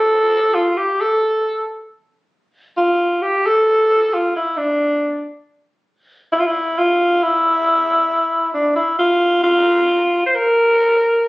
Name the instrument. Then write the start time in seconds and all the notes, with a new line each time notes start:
alto saxophone
Already playing: A4
0.54 F4
0.77 G4
1.01 A4
2.77 F4
3.22 G4
3.46 A4
4.14 F4
4.36 E4
4.57 D4
6.32 E4
6.40 F4
6.46 E4
6.78 F4
7.23 E4
8.54 D4
8.76 E4
8.99 F4
9.43 F4
10.26 C5
10.35 A#4